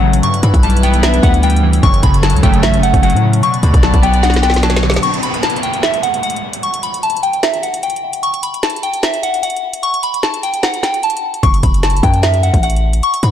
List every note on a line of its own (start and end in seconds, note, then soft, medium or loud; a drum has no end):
0.00 0.21 A1 loud
0.00 0.25 F#2 medium
0.00 0.03 C#3 medium
0.00 0.23 C#3 medium
0.00 0.22 F#3 medium
0.00 0.25 F#3 loud
0.00 0.25 A3 loud
0.00 0.22 C#4 medium
0.00 0.23 C#4 medium
0.00 0.22 A4 medium
0.00 0.21 F#5 medium
0.13 closed hi-hat medium
0.23 1.23 G2 medium
0.23 1.82 G3 medium
0.23 1.82 E4 medium
0.23 1.82 B4 medium
0.23 0.41 C#6 loud
0.23 closed hi-hat medium
0.34 closed hi-hat medium
0.43 0.53 G2 loud
0.43 1.43 E3 medium
0.43 0.61 B5 medium
0.43 closed hi-hat loud
0.54 1.20 B1 loud
0.54 kick medium
0.54 closed hi-hat medium
0.63 1.42 G3 medium
0.63 0.81 A5 medium
0.63 closed hi-hat medium
0.70 closed hi-hat medium
0.77 closed hi-hat soft
0.83 1.22 B3 loud
0.83 1.01 G5 medium
0.83 closed hi-hat medium
0.94 closed hi-hat medium
1.03 1.83 D4 medium
1.03 1.20 E5 medium
1.03 snare loud
1.03 closed hi-hat medium
1.14 closed hi-hat medium
1.23 1.81 D2 loud
1.23 1.83 B3 medium
1.23 1.40 F#5 medium
1.23 kick medium
1.23 closed hi-hat medium
1.34 closed hi-hat medium
1.43 1.83 G3 medium
1.43 1.81 G5 medium
1.43 closed hi-hat medium
1.50 closed hi-hat medium
1.56 closed hi-hat soft
1.63 1.83 E3 medium
1.73 closed hi-hat medium
1.83 2.02 F#1 loud
1.83 2.83 F#2 loud
1.83 3.42 F#3 medium
1.83 3.42 C#4 medium
1.83 3.42 A4 medium
1.83 2.00 C#6 loud
1.83 kick loud
1.83 closed hi-hat medium
1.94 closed hi-hat medium
2.03 2.35 F#1 loud
2.03 3.03 C#3 medium
2.03 2.20 B5 medium
2.03 kick medium
2.03 closed hi-hat medium
2.14 closed hi-hat medium
2.22 3.02 F#3 medium
2.22 2.40 A5 medium
2.22 snare loud
2.22 closed hi-hat medium
2.30 2.43 C#2 loud
2.30 closed hi-hat medium
2.37 closed hi-hat soft
2.43 2.65 F#1 loud
2.43 2.81 F#2 loud
2.43 2.81 A2 medium
2.43 2.81 C#3 loud
2.43 2.82 A3 loud
2.43 2.61 G5 medium
2.43 kick loud
2.43 closed hi-hat medium
2.54 closed hi-hat medium
2.63 2.80 A1 loud
2.63 3.43 C#4 medium
2.63 2.80 E5 medium
2.63 snare loud
2.63 closed hi-hat medium
2.74 closed hi-hat medium
2.78 2.93 F#1 loud
2.83 3.43 A3 medium
2.83 3.00 F#5 medium
2.83 closed hi-hat medium
2.94 3.15 F#1 loud
2.94 kick loud
2.94 closed hi-hat medium
3.03 3.43 F#3 loud
3.03 3.41 F#5 medium
3.03 closed hi-hat medium
3.10 3.42 A2 loud
3.10 closed hi-hat medium
3.17 closed hi-hat soft
3.23 3.43 C#3 medium
3.33 closed hi-hat medium
3.43 4.43 B2 medium
3.43 5.02 B3 medium
3.43 5.02 F#4 medium
3.43 5.02 D5 medium
3.43 3.60 C#6 loud
3.43 closed hi-hat medium
3.54 closed hi-hat medium
3.63 3.73 D2 loud
3.63 4.63 D3 medium
3.63 3.81 B5 medium
3.63 closed hi-hat medium
3.74 3.93 B1 loud
3.74 kick medium
3.74 closed hi-hat medium
3.83 4.62 F#3 medium
3.83 4.00 A5 medium
3.83 snare medium
3.83 closed hi-hat soft
3.94 4.99 B1 loud
3.94 kick medium
3.94 closed hi-hat medium
4.02 4.43 B3 loud
4.02 4.21 G5 medium
4.02 closed hi-hat medium
4.14 closed hi-hat medium
4.23 5.03 D4 medium
4.23 4.40 F#5 medium
4.23 snare medium
4.23 closed hi-hat medium
4.30 snare medium
4.30 closed hi-hat medium
4.36 snare medium
4.42 5.04 B3 medium
4.42 4.60 G5 medium
4.42 snare medium
4.42 closed hi-hat medium
4.50 snare medium
4.54 snare medium
4.54 closed hi-hat medium
4.63 5.03 F#3 loud
4.63 5.01 A5 medium
4.63 snare loud
4.63 closed hi-hat medium
4.70 snare medium
4.70 closed hi-hat medium
4.76 snare loud
4.76 closed hi-hat soft
4.82 5.03 D3 medium
4.82 snare medium
4.90 snare loud
4.90 closed hi-hat medium
4.96 snare loud
5.03 5.20 C#6 loud
5.03 closed hi-hat medium
5.03 downlifter medium
5.14 closed hi-hat medium
5.23 5.41 B5 medium
5.23 closed hi-hat medium
5.34 closed hi-hat medium
5.43 5.60 A5 medium
5.43 snare medium
5.43 closed hi-hat medium
5.50 closed hi-hat medium
5.56 closed hi-hat soft
5.63 5.80 G5 medium
5.63 closed hi-hat medium
5.74 closed hi-hat medium
5.83 6.00 E5 medium
5.83 snare loud
5.83 closed hi-hat medium
5.94 closed hi-hat medium
6.03 6.20 F#5 medium
6.03 closed hi-hat medium
6.14 closed hi-hat medium
6.23 6.61 F#5 medium
6.23 closed hi-hat medium
6.30 closed hi-hat medium
6.36 closed hi-hat soft
6.53 closed hi-hat medium
6.63 6.81 C#6 loud
6.63 closed hi-hat medium
6.74 closed hi-hat medium
6.83 7.01 B5 medium
6.83 closed hi-hat loud
6.94 closed hi-hat medium
7.03 7.20 A5 medium
7.03 closed hi-hat medium
7.10 closed hi-hat medium
7.17 closed hi-hat soft
7.23 7.40 G5 medium
7.23 closed hi-hat medium
7.33 closed hi-hat medium
7.43 7.60 E5 medium
7.43 snare loud
7.43 closed hi-hat medium
7.54 closed hi-hat medium
7.63 7.80 F#5 medium
7.63 closed hi-hat medium
7.74 closed hi-hat medium
7.83 8.21 G5 medium
7.83 closed hi-hat medium
7.90 closed hi-hat medium
7.96 closed hi-hat soft
8.13 closed hi-hat medium
8.23 8.40 C#6 loud
8.23 closed hi-hat medium
8.34 closed hi-hat medium
8.43 8.60 B5 medium
8.43 closed hi-hat medium
8.54 closed hi-hat medium
8.63 8.80 A5 medium
8.63 snare medium
8.63 closed hi-hat medium
8.70 closed hi-hat medium
8.76 closed hi-hat soft
8.83 9.01 G5 medium
8.83 closed hi-hat medium
8.94 closed hi-hat medium
9.03 9.20 E5 medium
9.03 snare loud
9.03 closed hi-hat medium
9.14 closed hi-hat medium
9.23 9.40 F#5 medium
9.23 closed hi-hat medium
9.34 closed hi-hat medium
9.43 9.81 F#5 medium
9.43 closed hi-hat medium
9.50 closed hi-hat medium
9.57 closed hi-hat soft
9.73 closed hi-hat medium
9.83 10.00 C#6 loud
9.83 closed hi-hat medium
9.94 closed hi-hat medium
10.03 10.21 B5 medium
10.03 closed hi-hat medium
10.14 closed hi-hat medium
10.23 10.40 A5 medium
10.23 snare loud
10.23 closed hi-hat soft
10.34 closed hi-hat medium
10.43 10.61 G5 medium
10.43 closed hi-hat medium
10.54 closed hi-hat medium
10.63 10.80 F#5 medium
10.63 snare loud
10.63 closed hi-hat medium
10.74 closed hi-hat medium
10.83 11.00 G5 medium
10.83 snare medium
10.83 closed hi-hat medium
10.94 closed hi-hat medium
11.03 11.41 A5 medium
11.03 closed hi-hat medium
11.10 closed hi-hat medium
11.17 closed hi-hat soft
11.34 closed hi-hat medium
11.43 11.62 F#1 loud
11.43 11.60 C#6 loud
11.43 kick loud
11.43 closed hi-hat medium
11.54 closed hi-hat medium
11.63 12.02 F#1 loud
11.63 11.81 B5 medium
11.63 kick medium
11.63 closed hi-hat medium
11.74 closed hi-hat medium
11.83 12.01 A5 medium
11.83 snare medium
11.83 closed hi-hat medium
11.90 closed hi-hat medium
11.97 closed hi-hat soft
12.03 12.52 F#2 loud
12.03 12.21 G5 medium
12.03 kick medium
12.03 closed hi-hat medium
12.14 closed hi-hat medium
12.23 12.40 E5 medium
12.23 snare loud
12.23 closed hi-hat medium
12.34 closed hi-hat medium
12.43 12.60 F#5 medium
12.43 closed hi-hat medium
12.54 13.01 A1 loud
12.54 kick medium
12.54 closed hi-hat medium
12.63 13.01 F#5 medium
12.63 closed hi-hat medium
12.70 closed hi-hat medium
12.76 closed hi-hat soft
12.93 closed hi-hat medium
13.03 13.21 C#6 loud
13.03 closed hi-hat medium
13.14 closed hi-hat medium
13.23 13.31 G2 loud
13.23 13.31 B5 medium
13.23 closed hi-hat loud